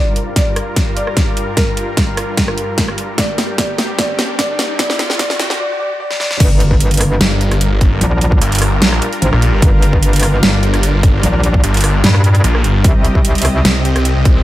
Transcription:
Already playing: supersaw synth G2 G3 F4 A#4, grand piano D5, riser
0.16 closed hi-hat
0.36 grand piano D5, kick, snare, closed hi-hat
0.56 cross-stick, closed hi-hat
0.76 kick, snare, closed hi-hat
0.97 grand piano D5, closed hi-hat
1.07 cross-stick
1.17 kick, snare, closed hi-hat
1.37 closed hi-hat
1.57 grand piano A#4, kick, snare, closed hi-hat
1.77 closed hi-hat
1.97 kick, snare, closed hi-hat
2.17 cross-stick, closed hi-hat
2.37 kick, snare, closed hi-hat
2.48 cross-stick
2.58 closed hi-hat
2.78 kick, snare, closed hi-hat
2.88 cross-stick
2.98 closed hi-hat
3.18 supersaw synth G4, grand piano D5, kick, snare, closed hi-hat
3.38 snare, closed hi-hat
3.58 grand piano D5, kick, snare, closed hi-hat
3.78 snare, closed hi-hat
3.99 grand piano D5, kick, snare, closed hi-hat
4.19 snare, closed hi-hat
4.39 grand piano D5, kick, snare, closed hi-hat
4.59 snare, closed hi-hat
4.79 grand piano D5, kick, snare, closed hi-hat
4.90 snare
4.99 snare, closed hi-hat
5.10 snare
5.19 grand piano D5, kick, snare, closed hi-hat
5.30 snare
5.40 snare, closed hi-hat
5.50 snare
5.60 grand piano D5
5.80 grand piano D5
6.00 grand piano D5
6.11 snare
6.20 grand piano D5, snare
6.31 snare
6.40 wobble bass G1, supersaw synth G3 D4 F4 A#4, kick, closed hi-hat, crash, impact
6.60 closed hi-hat
6.71 kick
6.80 closed hi-hat
6.91 closed hi-hat
6.94 closed hi-hat
6.97 cross-stick, closed hi-hat, open hi-hat
7.21 detuned saw bass G1, snare, closed hi-hat
7.41 closed hi-hat
7.51 detuned saw bass G1, cross-stick, closed hi-hat
7.61 closed hi-hat
7.72 detuned saw bass G1
7.81 kick, closed hi-hat
7.92 detuned saw bass G1
8.01 wobble bass A#1, closed hi-hat
8.21 closed hi-hat
8.32 kick
8.41 detuned saw bass G1, closed hi-hat
8.52 closed hi-hat
8.55 closed hi-hat
8.58 cross-stick, closed hi-hat, open hi-hat
8.82 detuned saw bass A#1, snare, closed hi-hat
8.92 cross-stick
9.02 closed hi-hat
9.13 closed hi-hat
9.22 wobble bass G#1, closed hi-hat
9.33 detuned saw bass A#1, cross-stick
9.42 closed hi-hat
9.53 detuned saw bass G1
9.62 wobble bass G1, kick, closed hi-hat
9.82 closed hi-hat
9.93 kick
10.03 closed hi-hat
10.13 closed hi-hat
10.16 closed hi-hat
10.20 cross-stick, closed hi-hat, open hi-hat
10.43 detuned saw bass G1, snare, closed hi-hat
10.63 closed hi-hat
10.74 detuned saw bass G1, cross-stick, closed hi-hat
10.83 closed hi-hat
10.94 detuned saw bass G1
11.03 kick, closed hi-hat
11.14 detuned saw bass G1
11.23 wobble bass A#1, closed hi-hat
11.44 closed hi-hat
11.54 kick
11.64 detuned saw bass G1, closed hi-hat
11.74 closed hi-hat
11.77 closed hi-hat
11.81 cross-stick, closed hi-hat, open hi-hat
12.04 wobble bass G2, snare, closed hi-hat
12.15 cross-stick
12.24 closed hi-hat
12.35 closed hi-hat
12.44 detuned saw bass A#1, closed hi-hat
12.55 cross-stick
12.64 detuned saw bass G1, closed hi-hat
12.84 wobble bass C2, supersaw synth C3 C4 G4 D#5, kick, closed hi-hat
13.05 closed hi-hat
13.15 kick
13.25 closed hi-hat
13.35 closed hi-hat
13.38 closed hi-hat
13.42 cross-stick, closed hi-hat, open hi-hat
13.65 detuned saw bass C2, snare, closed hi-hat
13.85 closed hi-hat
13.96 detuned saw bass C2, cross-stick, closed hi-hat
14.05 closed hi-hat
14.16 detuned saw bass C2
14.25 kick, closed hi-hat
14.36 detuned saw bass C2

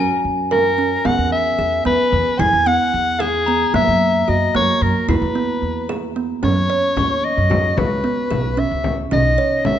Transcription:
Already playing: kalimba C#4, soprano saxophone A#4
0.00 glockenspiel G#5
0.25 upright bass F#2
0.51 kalimba A#4, soprano saxophone A#4, frame drum
0.78 kalimba C#4, frame drum
1.05 upright bass E2, kalimba B3, soprano saxophone F#5, frame drum
1.19 upright bass E2
1.32 soprano saxophone E5
1.59 upright bass E2, kalimba G#4
1.85 upright bass E2, kalimba B3, soprano saxophone B4, frame drum
2.12 upright bass E2
2.39 upright bass E2, kalimba E4, soprano saxophone G#5, frame drum
2.53 upright bass E2
2.66 kalimba B3, soprano saxophone F#5
2.94 upright bass E2
3.20 kalimba G#4, soprano saxophone G#4, frame drum
3.46 kalimba B3, glockenspiel A#5
3.74 upright bass F#2, kalimba A#3, soprano saxophone E5, frame drum
3.88 upright bass F#2
4.28 upright bass F#2, kalimba F#4, soprano saxophone D#5
4.55 upright bass F#2, kalimba A#3, soprano saxophone C#5, frame drum
4.81 upright bass F#2, soprano saxophone A#4
5.08 upright bass E2, kalimba E4, soprano saxophone B4, frame drum
5.22 upright bass E2
5.35 kalimba B3, frame drum
5.62 upright bass E2, frame drum
5.89 kalimba G#4, frame drum
6.16 kalimba B3
6.43 upright bass F#2, kalimba C#4, soprano saxophone C#5, frame drum
6.70 kalimba C#5
6.97 upright bass D#2, kalimba C#4, glockenspiel C#6, frame drum
7.25 soprano saxophone D#5
7.37 upright bass F#2
7.50 kalimba F#4, frame drum
7.77 upright bass C#2, soprano saxophone B4, frame drum
8.04 kalimba B3
8.31 upright bass B1, kalimba G#4, frame drum
8.57 kalimba C#4, soprano saxophone E5
8.71 upright bass C#2
8.84 frame drum
9.11 upright bass B1, kalimba C#4, soprano saxophone D#5, frame drum
9.38 kalimba C#5
9.65 upright bass G#1, kalimba C#4, soprano saxophone E5, frame drum

